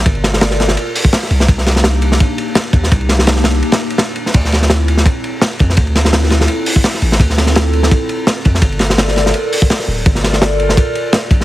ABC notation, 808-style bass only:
X:1
M:4/4
L:1/8
Q:"Swing 16ths" 1/4=168
K:Dm
V:1 name="808-style bass" clef=bass
G,,,4 z3 C,, | C,,4 z3 _E,, | C,,4 z4 | D,,4 z3 F,, |
D,,4 z3 A,,, | D,,4 z3 F,, | G,,,4 z3 D,,, | G,,,4 z3 B,,, |]